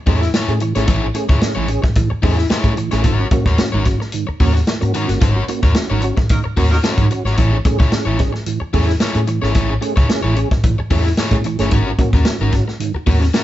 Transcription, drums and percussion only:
0.07 kick, open hi-hat
0.22 snare
0.34 snare, closed hi-hat
0.49 closed hi-hat
0.60 closed hi-hat
0.75 snare, closed hi-hat
0.88 kick, closed hi-hat
1.15 closed hi-hat
1.29 kick, snare
1.41 snare, closed hi-hat
1.68 closed hi-hat
1.83 kick, snare
1.95 kick, closed hi-hat
2.23 kick, open hi-hat
2.38 snare
2.50 snare, closed hi-hat
2.64 kick, closed hi-hat
2.77 closed hi-hat
2.91 snare, closed hi-hat
3.04 kick, closed hi-hat
3.31 kick, closed hi-hat
3.46 kick, snare
3.58 snare, closed hi-hat
3.85 kick, snare, closed hi-hat
4.01 snare
4.12 closed hi-hat
4.40 kick, open hi-hat
4.55 snare
4.67 snare, closed hi-hat
4.82 closed hi-hat
4.94 closed hi-hat
5.09 snare, closed hi-hat
5.21 kick, closed hi-hat
5.48 closed hi-hat
5.63 kick, snare
5.75 snare, closed hi-hat
6.02 closed hi-hat
6.17 kick, snare
6.29 kick, closed hi-hat
6.57 kick, open hi-hat
6.72 snare
6.84 snare, closed hi-hat
6.98 kick, closed hi-hat
7.11 closed hi-hat
7.26 snare
7.37 kick, closed hi-hat
7.65 kick, closed hi-hat
7.80 kick, snare
7.92 snare, closed hi-hat
8.19 kick, snare, closed hi-hat
8.35 snare
8.46 closed hi-hat
8.73 kick, open hi-hat
8.89 snare
9.00 snare, closed hi-hat
9.14 closed hi-hat
9.27 closed hi-hat
9.43 snare
9.55 kick, closed hi-hat
9.82 closed hi-hat
9.97 kick, snare
10.09 snare, closed hi-hat
10.36 closed hi-hat
10.51 kick, snare
10.63 kick, closed hi-hat
10.90 kick, open hi-hat
11.06 snare
11.17 snare, closed hi-hat
11.31 kick, closed hi-hat
11.44 closed hi-hat
11.59 snare, closed hi-hat
11.71 kick, closed hi-hat
11.99 kick, closed hi-hat
12.13 kick, snare
12.25 snare, closed hi-hat
12.52 kick, snare, closed hi-hat
12.68 snare
12.80 closed hi-hat
13.07 kick, open hi-hat
13.22 snare
13.34 snare, closed hi-hat

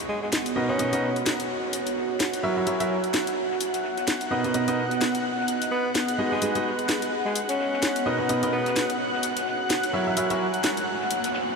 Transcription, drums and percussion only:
0.09 snare, ride
0.23 snare
0.32 snare, closed hi-hat, ride
0.46 closed hi-hat
0.56 ride
0.79 closed hi-hat
0.93 closed hi-hat
1.03 ride
1.16 snare, closed hi-hat
1.26 snare, closed hi-hat
1.40 closed hi-hat
1.50 ride
1.63 snare
1.73 closed hi-hat, ride
1.87 snare, closed hi-hat
1.97 snare, ride
2.20 snare, closed hi-hat, ride
2.33 closed hi-hat
2.44 ride
2.67 closed hi-hat, ride
2.80 closed hi-hat
2.90 ride
3.04 closed hi-hat
3.13 snare, closed hi-hat, ride
3.27 closed hi-hat
3.37 ride
3.51 snare
3.60 closed hi-hat, ride
3.74 snare, closed hi-hat
3.83 snare, ride
3.97 snare, closed hi-hat
4.07 snare, closed hi-hat, ride
4.21 closed hi-hat
4.31 ride
4.44 closed hi-hat
4.54 closed hi-hat, ride
4.68 closed hi-hat
4.77 ride
4.91 snare, closed hi-hat
5.01 snare, closed hi-hat
5.15 closed hi-hat
5.24 ride
5.39 snare
5.48 closed hi-hat, ride
5.61 snare, closed hi-hat
5.71 snare, ride
5.94 snare, closed hi-hat, ride
6.08 closed hi-hat
6.18 ride
6.42 closed hi-hat, ride
6.55 closed hi-hat
6.65 ride
6.79 closed hi-hat
6.89 snare, closed hi-hat
7.02 closed hi-hat
7.12 ride
7.26 snare
7.36 closed hi-hat, ride
7.49 snare, closed hi-hat
7.59 snare, ride
7.73 snare
7.82 snare, closed hi-hat, ride
7.96 closed hi-hat
8.07 ride
8.29 closed hi-hat, ride
8.43 closed hi-hat
8.53 ride
8.66 snare, closed hi-hat
8.76 snare, closed hi-hat, ride
8.90 closed hi-hat
8.99 ride
9.13 snare
9.23 closed hi-hat, ride
9.37 snare, closed hi-hat
9.46 snare, ride
9.70 snare, closed hi-hat, ride
9.83 closed hi-hat
9.94 ride
10.17 closed hi-hat, ride
10.30 closed hi-hat
10.41 ride
10.54 closed hi-hat
10.64 snare, closed hi-hat, ride
10.77 closed hi-hat
10.87 ride
11.01 snare
11.11 closed hi-hat, ride
11.24 snare, closed hi-hat
11.34 snare, ride

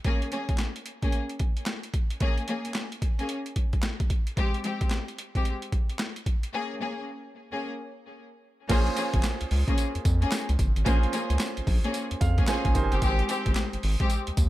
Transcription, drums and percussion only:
0.04 kick, closed hi-hat
0.22 closed hi-hat
0.32 closed hi-hat
0.49 kick, closed hi-hat
0.58 snare, clap, closed hi-hat
0.76 closed hi-hat
0.86 closed hi-hat
1.02 kick, closed hi-hat
1.12 closed hi-hat
1.29 closed hi-hat
1.39 kick, closed hi-hat
1.57 closed hi-hat
1.66 snare, clap, closed hi-hat
1.83 closed hi-hat
1.94 kick, closed hi-hat
2.10 closed hi-hat
2.20 kick, closed hi-hat
2.38 closed hi-hat
2.48 closed hi-hat
2.65 closed hi-hat
2.74 snare, clap, closed hi-hat
2.92 closed hi-hat
3.02 kick, closed hi-hat
3.19 closed hi-hat
3.29 closed hi-hat
3.46 closed hi-hat
3.56 kick, closed hi-hat
3.73 kick, closed hi-hat
3.82 snare, clap, closed hi-hat
4.00 kick, closed hi-hat
4.10 kick, closed hi-hat
4.27 closed hi-hat
4.37 kick, closed hi-hat
4.54 closed hi-hat
4.64 closed hi-hat
4.81 kick, closed hi-hat
4.90 snare, clap, closed hi-hat
5.08 closed hi-hat
5.18 closed hi-hat
5.35 kick, closed hi-hat
5.45 closed hi-hat
5.62 closed hi-hat
5.72 kick, closed hi-hat
5.89 closed hi-hat
5.99 snare, clap, closed hi-hat
6.16 closed hi-hat
6.26 kick, closed hi-hat
6.43 closed hi-hat
8.69 kick, closed hi-hat, crash, tambourine
8.87 closed hi-hat
8.97 closed hi-hat, tambourine
9.14 kick, closed hi-hat
9.23 snare, clap, closed hi-hat, tambourine
9.41 closed hi-hat
9.51 open hi-hat
9.68 kick, closed hi-hat
9.78 closed hi-hat, tambourine
9.95 closed hi-hat
10.05 kick, closed hi-hat, tambourine
10.22 closed hi-hat
10.31 snare, clap, closed hi-hat, tambourine
10.49 closed hi-hat
10.59 kick, closed hi-hat, tambourine
10.76 closed hi-hat
10.86 kick, closed hi-hat, tambourine
11.03 closed hi-hat
11.13 closed hi-hat, tambourine
11.30 closed hi-hat
11.39 snare, clap, closed hi-hat, tambourine
11.57 closed hi-hat
11.67 kick, open hi-hat
11.84 closed hi-hat
11.94 closed hi-hat, tambourine
12.11 closed hi-hat
12.21 kick, closed hi-hat, tambourine
12.38 kick, closed hi-hat
12.47 snare, clap, closed hi-hat, tambourine
12.65 kick, closed hi-hat
12.75 kick, closed hi-hat, tambourine
12.92 closed hi-hat
13.02 kick, closed hi-hat, tambourine
13.19 closed hi-hat
13.29 closed hi-hat, tambourine
13.46 kick, closed hi-hat
13.55 snare, clap, closed hi-hat, tambourine
13.73 closed hi-hat
13.83 open hi-hat
14.00 kick, closed hi-hat
14.10 closed hi-hat, tambourine
14.27 closed hi-hat
14.37 kick, closed hi-hat, tambourine

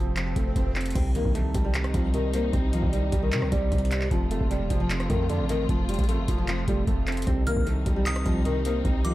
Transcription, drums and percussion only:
0.16 clap, closed hi-hat
0.36 kick, closed hi-hat
0.56 kick, closed hi-hat
0.76 clap, closed hi-hat
0.81 closed hi-hat
0.86 closed hi-hat
0.91 closed hi-hat
0.95 kick, closed hi-hat, crash
1.15 closed hi-hat
1.25 kick
1.35 closed hi-hat
1.54 kick, closed hi-hat
1.74 clap, closed hi-hat
1.84 cross-stick, closed hi-hat
1.94 kick, closed hi-hat
2.14 closed hi-hat
2.33 closed hi-hat
2.53 kick, closed hi-hat
2.73 closed hi-hat
2.83 kick
2.93 closed hi-hat
3.12 kick, closed hi-hat
3.32 clap, closed hi-hat
3.42 cross-stick
3.52 kick, closed hi-hat
3.72 kick, closed hi-hat
3.78 closed hi-hat
3.85 closed hi-hat
3.91 clap, closed hi-hat
4.01 clap
4.11 kick, closed hi-hat
4.31 closed hi-hat
4.41 kick
4.51 closed hi-hat
4.70 kick, closed hi-hat
4.90 clap, closed hi-hat
5.00 cross-stick, closed hi-hat
5.10 kick, closed hi-hat
5.30 closed hi-hat
5.49 closed hi-hat
5.69 kick, closed hi-hat
5.89 closed hi-hat, open hi-hat
5.94 closed hi-hat
5.99 kick, closed hi-hat
6.04 closed hi-hat
6.09 closed hi-hat
6.28 kick, closed hi-hat
6.48 clap, closed hi-hat
6.68 kick, closed hi-hat
6.87 kick, closed hi-hat
7.07 clap, closed hi-hat
7.12 closed hi-hat
7.17 closed hi-hat
7.22 closed hi-hat
7.27 kick, closed hi-hat
7.47 closed hi-hat
7.57 kick
7.67 closed hi-hat
7.86 kick, closed hi-hat
8.06 clap, closed hi-hat
8.16 cross-stick, closed hi-hat
8.26 kick, closed hi-hat
8.45 closed hi-hat
8.65 closed hi-hat
8.85 kick, closed hi-hat
9.05 closed hi-hat

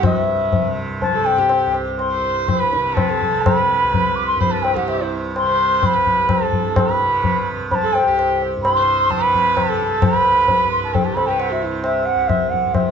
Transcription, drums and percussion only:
0.03 tabla na, tabla ge
0.53 tabla tin, tabla ge
1.02 tabla tin, tabla ge
1.26 tabla na
1.38 tabla ke
1.49 tabla na
1.74 tabla na
1.99 tabla na
2.48 tabla na, tabla ge
2.73 tabla te
2.97 tabla na, tabla ge
3.22 tabla ge
3.46 tabla na, tabla ge
3.94 tabla tin, tabla ge
4.41 tabla tin, tabla ge
4.65 tabla na
4.77 tabla ke
4.88 tabla na
5.36 tabla na
5.83 tabla na, tabla ge
6.06 tabla ge
6.29 tabla na, tabla ge
6.53 tabla ge
6.76 tabla na, tabla ge
7.24 tabla tin, tabla ge
7.71 tabla tin, tabla ge
7.95 tabla na
8.19 tabla na
8.42 tabla na
8.65 tabla na
9.11 tabla na, tabla ge
9.34 tabla ge
9.57 tabla na, tabla ge
9.80 tabla te
10.02 tabla na, tabla ge
10.48 tabla tin, tabla ge
10.95 tabla tin, tabla ge
11.17 tabla na
11.40 tabla na
11.84 tabla na
12.29 tabla na, tabla ge
12.53 tabla ge
12.75 tabla na, tabla ge

